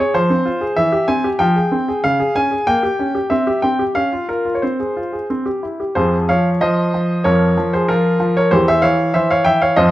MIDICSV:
0, 0, Header, 1, 2, 480
1, 0, Start_track
1, 0, Key_signature, -4, "minor"
1, 0, Tempo, 630915
1, 590, Time_signature, 2, 2, 24, 8
1, 2519, Tempo, 661521
1, 4919, Tempo, 630915
1, 7425, End_track
2, 0, Start_track
2, 0, Title_t, "Grand piano"
2, 0, Program_c, 0, 0
2, 0, Note_on_c, 0, 68, 37
2, 0, Note_on_c, 0, 73, 57
2, 109, Note_on_c, 0, 72, 69
2, 110, Note_on_c, 0, 53, 48
2, 114, Note_off_c, 0, 73, 0
2, 119, Note_off_c, 0, 68, 0
2, 227, Note_off_c, 0, 53, 0
2, 228, Note_on_c, 0, 60, 41
2, 345, Note_on_c, 0, 65, 36
2, 355, Note_off_c, 0, 60, 0
2, 464, Note_on_c, 0, 68, 40
2, 473, Note_off_c, 0, 65, 0
2, 582, Note_on_c, 0, 76, 71
2, 586, Note_on_c, 0, 52, 51
2, 587, Note_off_c, 0, 68, 0
2, 587, Note_off_c, 0, 72, 0
2, 702, Note_on_c, 0, 67, 44
2, 704, Note_off_c, 0, 52, 0
2, 820, Note_on_c, 0, 80, 73
2, 822, Note_on_c, 0, 60, 43
2, 826, Note_off_c, 0, 76, 0
2, 832, Note_off_c, 0, 67, 0
2, 945, Note_on_c, 0, 67, 41
2, 952, Note_off_c, 0, 60, 0
2, 968, Note_off_c, 0, 80, 0
2, 1057, Note_on_c, 0, 79, 72
2, 1064, Note_on_c, 0, 53, 54
2, 1069, Note_off_c, 0, 67, 0
2, 1185, Note_off_c, 0, 53, 0
2, 1186, Note_on_c, 0, 68, 42
2, 1305, Note_on_c, 0, 60, 38
2, 1317, Note_off_c, 0, 68, 0
2, 1434, Note_on_c, 0, 68, 43
2, 1437, Note_off_c, 0, 60, 0
2, 1519, Note_off_c, 0, 79, 0
2, 1550, Note_on_c, 0, 77, 74
2, 1555, Note_off_c, 0, 68, 0
2, 1555, Note_on_c, 0, 49, 51
2, 1671, Note_on_c, 0, 68, 47
2, 1672, Note_off_c, 0, 49, 0
2, 1792, Note_on_c, 0, 61, 40
2, 1792, Note_on_c, 0, 80, 76
2, 1794, Note_off_c, 0, 77, 0
2, 1800, Note_off_c, 0, 68, 0
2, 1910, Note_on_c, 0, 68, 38
2, 1921, Note_off_c, 0, 61, 0
2, 2031, Note_on_c, 0, 79, 72
2, 2032, Note_on_c, 0, 58, 54
2, 2034, Note_off_c, 0, 68, 0
2, 2035, Note_off_c, 0, 80, 0
2, 2151, Note_off_c, 0, 58, 0
2, 2153, Note_on_c, 0, 67, 37
2, 2277, Note_on_c, 0, 61, 37
2, 2281, Note_off_c, 0, 67, 0
2, 2395, Note_on_c, 0, 67, 38
2, 2404, Note_off_c, 0, 61, 0
2, 2486, Note_off_c, 0, 79, 0
2, 2509, Note_on_c, 0, 76, 60
2, 2516, Note_on_c, 0, 60, 46
2, 2518, Note_off_c, 0, 67, 0
2, 2631, Note_off_c, 0, 60, 0
2, 2634, Note_on_c, 0, 67, 43
2, 2724, Note_off_c, 0, 76, 0
2, 2746, Note_on_c, 0, 79, 62
2, 2753, Note_on_c, 0, 60, 40
2, 2758, Note_off_c, 0, 67, 0
2, 2868, Note_on_c, 0, 67, 35
2, 2876, Note_off_c, 0, 60, 0
2, 2889, Note_off_c, 0, 79, 0
2, 2983, Note_on_c, 0, 77, 65
2, 2986, Note_on_c, 0, 61, 42
2, 2988, Note_off_c, 0, 67, 0
2, 3103, Note_off_c, 0, 61, 0
2, 3111, Note_on_c, 0, 65, 35
2, 3202, Note_off_c, 0, 77, 0
2, 3219, Note_off_c, 0, 65, 0
2, 3227, Note_on_c, 0, 70, 49
2, 3229, Note_on_c, 0, 65, 30
2, 3337, Note_off_c, 0, 65, 0
2, 3348, Note_on_c, 0, 65, 33
2, 3416, Note_on_c, 0, 73, 35
2, 3419, Note_off_c, 0, 70, 0
2, 3471, Note_on_c, 0, 72, 44
2, 3472, Note_off_c, 0, 65, 0
2, 3472, Note_off_c, 0, 73, 0
2, 3477, Note_on_c, 0, 60, 37
2, 3594, Note_off_c, 0, 60, 0
2, 3597, Note_on_c, 0, 68, 34
2, 3719, Note_on_c, 0, 65, 31
2, 3725, Note_off_c, 0, 68, 0
2, 3835, Note_on_c, 0, 68, 30
2, 3847, Note_off_c, 0, 65, 0
2, 3931, Note_off_c, 0, 72, 0
2, 3959, Note_off_c, 0, 68, 0
2, 3963, Note_on_c, 0, 60, 38
2, 4076, Note_on_c, 0, 67, 30
2, 4080, Note_off_c, 0, 60, 0
2, 4201, Note_on_c, 0, 64, 28
2, 4209, Note_off_c, 0, 67, 0
2, 4324, Note_on_c, 0, 67, 28
2, 4332, Note_off_c, 0, 64, 0
2, 4436, Note_on_c, 0, 72, 62
2, 4441, Note_on_c, 0, 41, 42
2, 4442, Note_on_c, 0, 53, 42
2, 4446, Note_off_c, 0, 67, 0
2, 4446, Note_on_c, 0, 68, 46
2, 4581, Note_off_c, 0, 72, 0
2, 4667, Note_off_c, 0, 68, 0
2, 4672, Note_off_c, 0, 53, 0
2, 4674, Note_off_c, 0, 41, 0
2, 4680, Note_on_c, 0, 77, 64
2, 4683, Note_on_c, 0, 53, 42
2, 4686, Note_on_c, 0, 73, 46
2, 4822, Note_off_c, 0, 77, 0
2, 4904, Note_off_c, 0, 53, 0
2, 4904, Note_off_c, 0, 73, 0
2, 4913, Note_on_c, 0, 75, 66
2, 4915, Note_on_c, 0, 53, 45
2, 4919, Note_on_c, 0, 72, 52
2, 5152, Note_off_c, 0, 53, 0
2, 5164, Note_on_c, 0, 53, 37
2, 5375, Note_off_c, 0, 72, 0
2, 5388, Note_off_c, 0, 53, 0
2, 5394, Note_on_c, 0, 73, 65
2, 5399, Note_on_c, 0, 53, 49
2, 5401, Note_on_c, 0, 41, 42
2, 5402, Note_on_c, 0, 70, 47
2, 5403, Note_off_c, 0, 75, 0
2, 5634, Note_off_c, 0, 53, 0
2, 5637, Note_off_c, 0, 41, 0
2, 5646, Note_on_c, 0, 53, 42
2, 5741, Note_off_c, 0, 70, 0
2, 5762, Note_off_c, 0, 73, 0
2, 5768, Note_on_c, 0, 72, 58
2, 5778, Note_on_c, 0, 68, 44
2, 5875, Note_off_c, 0, 53, 0
2, 5882, Note_on_c, 0, 70, 68
2, 5885, Note_off_c, 0, 68, 0
2, 5887, Note_on_c, 0, 53, 43
2, 5888, Note_off_c, 0, 72, 0
2, 5894, Note_on_c, 0, 65, 52
2, 6110, Note_off_c, 0, 53, 0
2, 6121, Note_on_c, 0, 53, 45
2, 6226, Note_off_c, 0, 65, 0
2, 6245, Note_off_c, 0, 70, 0
2, 6249, Note_on_c, 0, 73, 63
2, 6259, Note_on_c, 0, 70, 49
2, 6357, Note_off_c, 0, 53, 0
2, 6359, Note_on_c, 0, 72, 70
2, 6362, Note_on_c, 0, 40, 43
2, 6365, Note_off_c, 0, 70, 0
2, 6365, Note_on_c, 0, 52, 49
2, 6368, Note_off_c, 0, 73, 0
2, 6368, Note_on_c, 0, 67, 52
2, 6479, Note_off_c, 0, 67, 0
2, 6483, Note_off_c, 0, 72, 0
2, 6489, Note_on_c, 0, 76, 76
2, 6498, Note_on_c, 0, 72, 54
2, 6586, Note_off_c, 0, 52, 0
2, 6594, Note_on_c, 0, 77, 75
2, 6596, Note_off_c, 0, 40, 0
2, 6597, Note_on_c, 0, 52, 46
2, 6604, Note_off_c, 0, 72, 0
2, 6604, Note_on_c, 0, 73, 52
2, 6607, Note_off_c, 0, 76, 0
2, 6827, Note_off_c, 0, 73, 0
2, 6830, Note_off_c, 0, 52, 0
2, 6837, Note_on_c, 0, 76, 65
2, 6839, Note_off_c, 0, 77, 0
2, 6841, Note_on_c, 0, 52, 48
2, 6844, Note_on_c, 0, 72, 49
2, 6955, Note_off_c, 0, 72, 0
2, 6960, Note_off_c, 0, 76, 0
2, 6963, Note_on_c, 0, 77, 68
2, 6970, Note_on_c, 0, 73, 58
2, 7064, Note_off_c, 0, 52, 0
2, 7069, Note_on_c, 0, 79, 67
2, 7076, Note_on_c, 0, 52, 46
2, 7077, Note_off_c, 0, 73, 0
2, 7079, Note_on_c, 0, 76, 59
2, 7082, Note_off_c, 0, 77, 0
2, 7191, Note_off_c, 0, 76, 0
2, 7194, Note_off_c, 0, 79, 0
2, 7199, Note_on_c, 0, 77, 65
2, 7206, Note_on_c, 0, 73, 52
2, 7309, Note_off_c, 0, 52, 0
2, 7312, Note_on_c, 0, 75, 79
2, 7314, Note_off_c, 0, 73, 0
2, 7317, Note_on_c, 0, 53, 60
2, 7318, Note_off_c, 0, 77, 0
2, 7318, Note_on_c, 0, 41, 51
2, 7321, Note_on_c, 0, 72, 59
2, 7425, Note_off_c, 0, 41, 0
2, 7425, Note_off_c, 0, 53, 0
2, 7425, Note_off_c, 0, 72, 0
2, 7425, Note_off_c, 0, 75, 0
2, 7425, End_track
0, 0, End_of_file